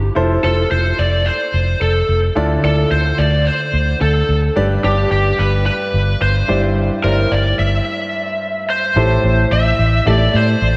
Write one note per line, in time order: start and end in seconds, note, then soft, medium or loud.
0.00 0.17 D4 medium
0.00 0.15 E4 medium
0.00 0.18 G4 medium
0.00 0.16 C5 medium
0.15 0.36 F1 medium
0.15 0.38 E4 medium
0.15 0.39 F4 medium
0.15 0.39 A4 medium
0.15 0.39 C5 medium
0.43 0.63 F1 medium
0.43 1.35 E4 medium
0.43 1.36 F4 medium
0.43 1.36 A4 medium
0.43 0.71 A4 medium
0.43 1.36 C5 medium
0.71 0.91 F1 medium
0.71 0.99 C5 medium
0.99 1.28 F1 medium
0.99 1.27 D5 medium
1.26 1.81 C5 loud
1.54 1.73 F1 medium
1.81 2.01 F1 medium
1.81 2.20 A4 medium
2.09 2.28 F1 medium
2.35 2.56 D2 medium
2.35 3.14 D3 medium
2.35 2.59 E4 medium
2.35 2.59 F4 medium
2.35 2.59 A4 medium
2.35 2.59 D5 medium
2.63 2.83 D2 medium
2.63 3.55 E4 medium
2.63 3.56 F4 medium
2.63 3.56 A4 medium
2.63 2.91 A4 medium
2.63 3.56 D5 medium
2.91 3.11 D2 medium
2.91 3.19 C5 medium
3.18 3.48 D2 medium
3.18 3.47 D5 medium
3.46 4.01 C5 medium
3.73 3.93 D2 medium
4.01 4.21 D2 medium
4.01 4.40 A4 medium
4.29 4.48 D2 medium
4.56 4.76 G1 medium
4.56 5.35 G2 medium
4.56 4.79 D4 medium
4.56 4.79 G4 medium
4.56 4.79 B4 medium
4.56 4.79 D5 medium
4.83 5.03 G1 medium
4.83 5.76 D4 medium
4.83 5.76 G4 medium
4.83 5.10 G4 medium
4.83 5.76 B4 medium
4.83 5.76 D5 medium
5.11 5.31 G1 medium
5.11 5.40 G4 medium
5.39 5.68 G1 medium
5.39 5.65 B4 medium
5.66 6.21 B4 loud
5.94 6.13 G1 medium
6.21 6.41 G1 medium
6.21 6.60 C5 medium
6.48 6.88 G1 medium
6.48 7.27 G2 medium
6.48 6.95 E4 medium
6.48 6.95 G4 medium
6.48 6.95 C5 medium
6.48 6.95 D5 medium
7.03 7.24 G1 medium
7.03 7.96 E4 medium
7.03 7.96 G4 medium
7.03 7.32 A#4 medium
7.03 7.96 C5 medium
7.03 7.96 D5 medium
7.31 7.51 G1 medium
7.31 7.59 D5 medium
7.59 7.79 G1 medium
7.59 8.65 E5 medium
8.70 9.54 C5 medium
8.96 9.16 A1 loud
8.96 9.75 A2 medium
8.96 9.88 E4 medium
8.96 9.89 G4 medium
8.96 9.89 A4 medium
8.96 9.89 C5 medium
9.24 9.43 A1 loud
9.51 9.71 A1 medium
9.51 10.07 E5 loud
9.79 9.99 A1 medium
10.06 10.26 A1 loud
10.06 10.77 E4 medium
10.06 10.77 G4 medium
10.06 10.77 A4 medium
10.06 10.77 D5 medium
10.06 10.35 D5 loud
10.34 10.54 A2 loud
10.34 10.77 C5 medium
10.62 10.77 A1 loud